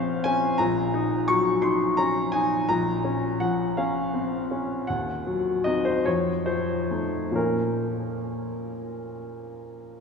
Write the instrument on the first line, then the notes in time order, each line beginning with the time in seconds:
grand piano
Already playing: A#1 F3 C4 C#4 C5 F5 F#5
0.24 C#4 G#5
0.58 A#1 A#5
0.94 D#4
1.28 F#3 C#6
1.62 D#4 C6
1.97 C#4 A#5
2.32 D#4 G#5
2.69 A#1 A#5
3.05 C#4
3.40 F3 F#5
3.77 C#4 F5
4.14 C4
4.51 C#4
4.87 D#2 F#5
5.27 F#3
5.64 C4 D#4 D#5
5.85 C5
6.05 F2 C#5
6.46 F3 C5
6.91 A3 D#4
7.31 A#2 F3 A#3
7.35 C#4 A#4